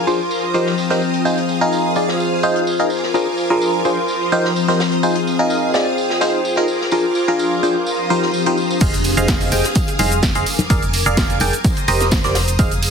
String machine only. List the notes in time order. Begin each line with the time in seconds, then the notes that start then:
Already playing: F4 A#4 G#5 D6
0.31 C5 A#5 D#6
1.25 G#4 F5
2.91 F4 A#4 G#5 D6
4.09 C5 A#5 D#6
5.03 G#4 F5
6.68 F4 G#4 A#4 D6
7.87 F4 C5 A#5 D#6
8.81 G#4 F5 D#6
10.47 A#4 G#5 D6
11.64 C5 A#5 D#6
12.59 G#4 F5